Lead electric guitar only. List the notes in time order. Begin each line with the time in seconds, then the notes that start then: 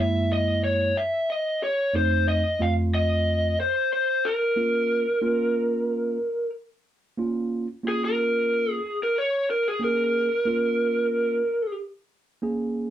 0.00 E5
0.32 D#5
0.64 C#5
0.97 E5
1.30 D#5
1.63 C#5
1.96 C5
2.29 D#5
2.62 F5
2.94 D#5
3.60 C5
3.93 C5
4.25 A#4
7.88 G#4
8.05 A#4
8.71 G#4
9.03 A#4
9.18 C#5
9.50 A#4
9.68 G#4
9.84 A#4